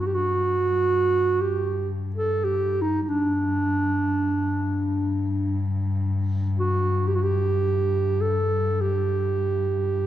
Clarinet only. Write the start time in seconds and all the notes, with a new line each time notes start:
0.00 F#4
0.07 G4
0.15 F#4
1.41 G4
2.16 A4
2.45 G4
2.82 D#4
3.03 D#4
3.09 D4
6.60 F#4
7.08 G4
7.16 F#4
7.23 G4
8.22 A4
8.82 G4